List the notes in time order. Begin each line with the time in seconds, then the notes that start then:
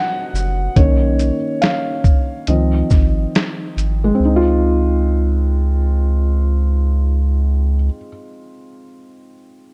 Already playing: D#5 F#5
0.33 F#1, shaker
0.76 B1 D#3 A#3 C#4 C#5, kick, closed hi-hat
1.19 closed hi-hat, shaker
1.62 F5, snare, closed hi-hat
2.04 kick, shaker
2.47 C#2 D#3 F3 C4 D#5, closed hi-hat
2.90 G#1, kick, snare, shaker
3.35 snare, closed hi-hat
3.77 G#1, closed hi-hat, shaker
4.04 G#3
4.15 C4
4.20 C#2
4.25 D#4
4.36 F4